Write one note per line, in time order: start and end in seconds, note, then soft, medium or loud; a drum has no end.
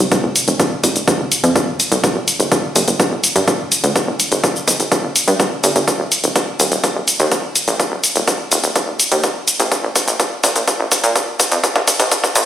0.12 kick loud
0.12 closed hi-hat medium
0.12 shaker soft
0.24 0.31 F1 medium
0.36 open hi-hat loud
0.36 shaker medium
0.48 0.55 F1 medium
0.48 closed hi-hat soft
0.48 shaker soft
0.60 kick loud
0.60 closed hi-hat medium
0.60 shaker soft
0.84 0.91 F1 medium
0.84 kick medium
0.84 open hi-hat loud
0.84 shaker medium
0.96 1.03 F1 medium
0.96 closed hi-hat soft
0.96 shaker soft
1.08 kick loud
1.08 closed hi-hat medium
1.08 shaker soft
1.20 1.27 F1 medium
1.32 open hi-hat loud
1.32 shaker medium
1.44 1.81 F2 medium
1.44 closed hi-hat medium
1.44 shaker soft
1.56 kick loud
1.56 closed hi-hat medium
1.56 shaker soft
1.80 1.87 F1 medium
1.80 open hi-hat medium
1.80 shaker medium
1.92 1.99 C2 medium
1.92 closed hi-hat medium
1.92 shaker soft
2.04 kick loud
2.04 closed hi-hat medium
2.04 shaker soft
2.16 2.23 G1 medium
2.28 open hi-hat loud
2.28 shaker medium
2.40 2.47 G1 medium
2.40 closed hi-hat medium
2.40 shaker soft
2.52 kick loud
2.52 closed hi-hat medium
2.52 shaker soft
2.76 2.83 G1 medium
2.76 open hi-hat medium
2.76 shaker medium
2.88 2.95 G1 medium
2.88 closed hi-hat soft
2.88 shaker soft
3.00 kick loud
3.00 closed hi-hat medium
3.00 shaker soft
3.12 3.19 G1 medium
3.24 open hi-hat loud
3.24 shaker medium
3.36 3.73 G2 medium
3.36 closed hi-hat soft
3.36 shaker soft
3.48 kick loud
3.48 closed hi-hat medium
3.48 shaker soft
3.72 3.79 G1 medium
3.72 open hi-hat medium
3.72 shaker medium
3.84 3.91 D2 medium
3.84 closed hi-hat medium
3.84 shaker soft
3.96 kick loud
3.96 closed hi-hat medium
3.96 shaker soft
4.08 4.15 G1 medium
4.20 open hi-hat loud
4.20 shaker medium
4.32 4.39 G1 medium
4.32 closed hi-hat soft
4.32 shaker soft
4.44 kick loud
4.44 closed hi-hat medium
4.44 shaker soft
4.56 shaker soft
4.68 4.75 G1 medium
4.68 kick medium
4.68 open hi-hat medium
4.68 shaker medium
4.80 4.87 G1 medium
4.80 closed hi-hat soft
4.80 shaker soft
4.92 kick loud
4.92 closed hi-hat medium
4.92 shaker soft
5.04 5.11 G1 medium
5.16 open hi-hat loud
5.16 shaker medium
5.28 5.35 G2 medium
5.28 closed hi-hat soft
5.28 shaker soft
5.40 kick loud
5.40 closed hi-hat medium
5.40 shaker soft
5.64 5.71 G1 medium
5.64 open hi-hat loud
5.64 shaker medium
5.76 5.83 G1 medium
5.76 closed hi-hat soft
5.76 shaker soft
5.88 kick loud
5.88 closed hi-hat medium
5.88 shaker soft
6.00 6.07 D#1 medium
6.12 open hi-hat loud
6.12 shaker medium
6.24 6.31 D#1 medium
6.24 closed hi-hat soft
6.24 shaker soft
6.36 kick loud
6.36 closed hi-hat medium
6.36 shaker soft
6.60 6.67 D#1 medium
6.60 open hi-hat medium
6.60 shaker medium
6.72 6.79 D#1 medium
6.72 closed hi-hat soft
6.72 shaker soft
6.84 kick medium
6.84 closed hi-hat medium
6.84 shaker soft
6.96 7.03 D#1 medium
7.08 open hi-hat loud
7.08 shaker medium
7.20 7.57 D#2 medium
7.20 closed hi-hat soft
7.20 shaker soft
7.32 kick loud
7.32 closed hi-hat medium
7.32 shaker soft
7.56 7.63 D#1 medium
7.56 open hi-hat loud
7.56 shaker medium
7.68 7.75 A#1 medium
7.68 closed hi-hat soft
7.68 shaker soft
7.80 kick loud
7.80 closed hi-hat medium
7.80 shaker soft
7.92 7.99 D#1 medium
8.04 open hi-hat loud
8.04 shaker medium
8.16 8.23 D#1 medium
8.16 closed hi-hat medium
8.16 shaker soft
8.28 kick loud
8.28 closed hi-hat medium
8.28 shaker soft
8.52 8.59 D#1 medium
8.52 open hi-hat medium
8.52 shaker medium
8.64 8.71 D#1 medium
8.64 closed hi-hat medium
8.64 shaker soft
8.76 kick loud
8.76 closed hi-hat medium
8.76 shaker soft
8.88 8.95 D#1 medium
9.00 open hi-hat loud
9.00 shaker medium
9.12 9.49 D#2 medium
9.12 closed hi-hat medium
9.12 shaker soft
9.24 kick loud
9.24 closed hi-hat medium
9.24 shaker soft
9.48 9.55 D#1 medium
9.48 open hi-hat medium
9.48 shaker medium
9.60 9.67 A#1 medium
9.60 closed hi-hat medium
9.60 shaker soft
9.72 kick loud
9.72 closed hi-hat medium
9.72 shaker soft
9.84 9.91 A#1 medium
9.96 kick loud
9.96 open hi-hat loud
9.96 shaker medium
10.08 10.15 A#1 medium
10.08 closed hi-hat medium
10.08 shaker soft
10.20 kick loud
10.20 closed hi-hat medium
10.20 shaker soft
10.44 10.51 A#1 loud
10.44 kick loud
10.44 open hi-hat loud
10.44 shaker medium
10.56 10.63 A#1 medium
10.56 closed hi-hat medium
10.56 shaker soft
10.68 kick loud
10.68 closed hi-hat medium
10.68 shaker soft
10.80 10.87 A#1 medium
10.92 kick loud
10.92 open hi-hat loud
10.92 shaker medium
11.04 11.41 A#2 medium
11.04 closed hi-hat medium
11.04 shaker soft
11.16 kick loud
11.16 closed hi-hat medium
11.16 shaker soft
11.40 11.47 A#1 medium
11.40 kick loud
11.40 open hi-hat medium
11.40 shaker medium
11.52 11.59 F2 medium
11.52 closed hi-hat medium
11.52 shaker soft
11.64 kick loud
11.64 closed hi-hat medium
11.64 shaker soft
11.76 11.83 A#1 medium
11.76 kick medium
11.76 closed hi-hat soft
11.88 kick loud
11.88 open hi-hat loud
11.88 shaker medium
12.00 12.07 A#1 medium
12.00 kick medium
12.00 closed hi-hat medium
12.00 shaker soft
12.12 kick loud
12.12 closed hi-hat medium
12.12 shaker soft
12.24 kick medium
12.24 shaker soft
12.35 12.43 A#1 medium
12.35 kick loud
12.35 open hi-hat medium
12.35 shaker medium